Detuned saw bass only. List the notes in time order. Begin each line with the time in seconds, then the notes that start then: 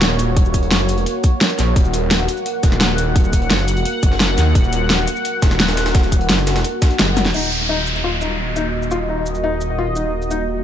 Already playing: D#1
0.71 F#1
1.59 A#1
1.76 D#1
2.63 D#1
3.51 F#1
4.03 F#1
4.38 D#2
4.55 D#1
5.42 D#1
6.30 F#1
6.99 F#1
7.34 D#1